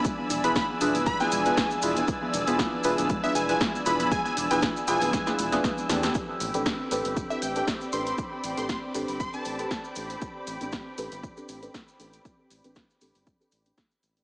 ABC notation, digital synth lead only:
X:1
M:4/4
L:1/16
Q:"Swing 16ths" 1/4=118
K:Am
V:1 name="Digital synth lead"
z3 b b z3 b ^g4 z3 | z8 z e ^g g z2 b b | ^g g z g z2 g3 z6 z | z8 z e g g z2 c' c' |
z3 c' c' z3 c' a4 z3 | z16 | z16 |]